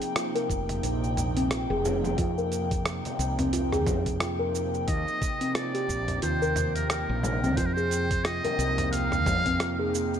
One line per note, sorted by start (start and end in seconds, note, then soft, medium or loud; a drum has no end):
0.00 10.20 C3 medium
0.00 7.57 F3 medium
0.00 7.58 A#3 medium
0.00 7.58 D#4 medium
0.00 10.20 G5 medium
0.00 closed hi-hat soft
0.00 cabasa soft
0.16 0.33 F4 medium
0.16 cross-stick loud
0.16 closed hi-hat medium
0.16 cabasa soft
0.35 0.49 A#4 medium
0.35 closed hi-hat soft
0.35 cabasa soft
0.50 0.79 F1 medium
0.50 kick medium
0.50 cabasa medium
0.69 closed hi-hat soft
0.69 mid tom medium
0.69 cabasa soft
0.83 1.65 A#1 medium
0.83 closed hi-hat medium
0.83 cabasa soft
1.04 cabasa soft
1.17 closed hi-hat soft
1.17 mid tom medium
1.17 cabasa medium
1.36 1.49 C4 medium
1.36 closed hi-hat soft
1.36 cabasa soft
1.51 1.68 F4 medium
1.51 cross-stick loud
1.51 closed hi-hat medium
1.51 cabasa medium
1.70 2.14 F1 loud
1.70 1.84 G#4 medium
1.85 frame drum medium
1.85 cabasa medium
2.04 frame drum medium
2.04 cabasa soft
2.18 3.00 F2 loud
2.18 2.36 F4 medium
2.18 kick loud
2.18 closed hi-hat medium
2.18 cabasa soft
2.38 2.51 A#4 medium
2.38 cabasa soft
2.52 closed hi-hat soft
2.52 cabasa medium
2.71 kick loud
2.71 closed hi-hat soft
2.71 cabasa soft
2.86 cross-stick loud
2.86 closed hi-hat medium
2.86 cabasa soft
3.05 closed hi-hat soft
3.05 frame drum medium
3.05 cabasa soft
3.19 3.87 C2 medium
3.19 closed hi-hat soft
3.19 cabasa medium
3.39 3.52 C4 medium
3.39 closed hi-hat soft
3.39 mid tom medium
3.39 cabasa soft
3.53 3.71 F4 medium
3.53 closed hi-hat medium
3.53 cabasa soft
3.72 3.86 G#4 medium
3.72 cross-stick soft
3.72 mid tom medium
3.72 cabasa soft
3.87 4.84 F2 medium
3.87 kick loud
3.87 closed hi-hat soft
3.87 mid tom medium
3.87 frame drum medium
3.87 cabasa medium
4.06 kick medium
4.06 closed hi-hat soft
4.06 cabasa soft
4.20 4.38 F4 medium
4.20 cross-stick loud
4.20 closed hi-hat medium
4.20 cabasa soft
4.39 4.53 A#4 medium
4.55 cabasa medium
4.74 cabasa soft
4.88 5.04 D#2 loud
4.88 5.57 D#5 loud
4.88 kick loud
4.88 closed hi-hat medium
4.88 cabasa soft
5.08 cabasa soft
5.22 kick loud
5.22 closed hi-hat soft
5.22 cabasa medium
5.41 5.54 C4 medium
5.41 closed hi-hat soft
5.41 cabasa soft
5.55 5.73 F4 medium
5.55 6.22 D5 medium
5.55 cross-stick loud
5.55 closed hi-hat medium
5.55 cabasa soft
5.74 5.88 G4 medium
5.74 closed hi-hat soft
5.74 cabasa soft
5.89 6.18 A#1 medium
5.89 kick medium
5.89 cabasa medium
6.08 closed hi-hat soft
6.08 mid tom medium
6.08 cabasa soft
6.22 7.05 D#2 medium
6.22 6.40 F4 medium
6.22 6.72 C5 medium
6.22 closed hi-hat medium
6.22 cabasa soft
6.42 6.56 A#4 medium
6.42 cabasa soft
6.56 closed hi-hat soft
6.56 mid tom medium
6.56 cabasa medium
6.75 6.89 A#4 medium
6.75 closed hi-hat soft
6.75 cabasa soft
6.90 7.58 A#4 medium
6.90 cross-stick loud
6.90 closed hi-hat medium
6.90 cabasa soft
7.09 7.58 A#1 loud
7.23 frame drum loud
7.23 cabasa medium
7.43 7.56 C4 medium
7.43 frame drum medium
7.43 cabasa soft
7.57 8.40 F2 loud
7.57 7.75 F4 medium
7.57 7.67 C5 loud
7.57 kick loud
7.57 closed hi-hat medium
7.57 cabasa soft
7.66 7.75 A#4 medium
7.73 7.90 G#4 medium
7.73 8.26 C5 loud
7.78 cabasa soft
7.90 10.20 F3 medium
7.90 closed hi-hat soft
7.90 cabasa medium
8.11 10.20 A#3 medium
8.11 kick medium
8.11 closed hi-hat soft
8.11 cabasa soft
8.19 10.20 D#4 medium
8.24 8.42 F4 medium
8.24 8.91 D#5 loud
8.24 cross-stick loud
8.24 closed hi-hat medium
8.24 cabasa soft
8.44 8.58 A#4 medium
8.44 closed hi-hat soft
8.44 frame drum medium
8.44 cabasa soft
8.59 9.26 C2 medium
8.59 closed hi-hat soft
8.59 cabasa medium
8.78 closed hi-hat soft
8.78 mid tom medium
8.78 cabasa soft
8.92 9.89 F5 loud
8.92 closed hi-hat medium
8.92 cabasa soft
9.12 cross-stick soft
9.12 mid tom medium
9.12 cabasa soft
9.26 10.20 F2 medium
9.26 kick loud
9.26 closed hi-hat soft
9.26 mid tom medium
9.26 frame drum loud
9.26 cabasa medium
9.46 9.58 C4 medium
9.46 kick medium
9.46 closed hi-hat soft
9.46 cabasa soft
9.60 9.77 F4 medium
9.60 cross-stick loud
9.60 closed hi-hat medium
9.60 cabasa soft
9.79 9.93 G#4 medium
9.95 cabasa medium
10.14 cabasa soft